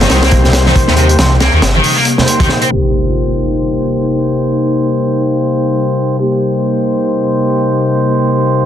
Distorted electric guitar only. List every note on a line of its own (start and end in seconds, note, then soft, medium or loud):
0.01 0.22 D#3 medium
0.22 0.30 A#3 loud
0.66 0.73 D#3 loud
0.87 0.92 C3 loud
0.97 1.07 C3 loud
1.41 1.52 A#3 medium
1.53 1.60 D#3 medium
1.75 1.96 D#3 medium
1.97 2.04 A#3 loud
2.40 2.49 D#3 medium
2.62 2.69 C4 loud